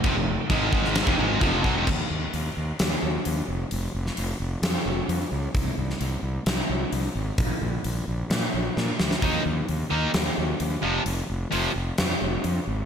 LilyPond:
<<
  \new Staff \with { instrumentName = "Distorted electric guitar" } { \clef bass \time 4/4 \key f \minor \tempo 4 = 131 <f, c>16 <f, c>8 r16 <aes, ees aes>8 <aes, ees aes>8. <f, c>16 <aes, ees aes>8 <f, c f>8 <b, ges>16 <f, c>16 | r1 | r1 | r1 |
r1 | <ees bes ees'>8 r4 <ees bes ees'>8 r4. <f, c f>8 | r4 <f, c f>8 r2 r8 | }
  \new Staff \with { instrumentName = "Fingered electric bass" } { \clef bass \time 4/4 \key f \minor f,,16 f,,8 r16 aes,,8 aes,,8. f,,16 aes,,8 f,,8 b,,16 f,,16 | ees,8 ees,8 ees,8 ees,8 ees,8 ees,8 ees,8 f,,8 | f,,8 f,,8 f,,8 f,,8 f,8 f,,8 f,8 des,8 | c,8 c,8 c,8 c,8 c,8 c,8 c,8 aes,,8 |
bes,,8 bes,,8 bes,,8 bes,,8 bes,8 bes,,8 bes,8 d,8 | ees,8 ees,8 ees,8 ees,8 ees,8 ees,8 ees,8 f,,8 | f,,8 f,,8 f,,8 f,,8 f,8 f,,8 f,8 aes,,8 | }
  \new DrumStaff \with { instrumentName = "Drums" } \drummode { \time 4/4 <cymc bd>4 <cymc bd>8 bd16 sn16 <cymc sn>16 bd8. <cymc bd>8 bd8 | <cymc bd>4 hho4 <hho sn>4 hho4 | hho8. sn16 hho4 <hho sn>4 hho4 | <hho bd>8. sn16 hho4 <hho sn>4 hho4 |
<hho bd>4 hho4 <hho sn>4 sn8 sn16 sn16 | <hho bd>4 hho4 <hho sn>4 hho4 | hho4 hho4 <hho sn>4 hho4 | }
>>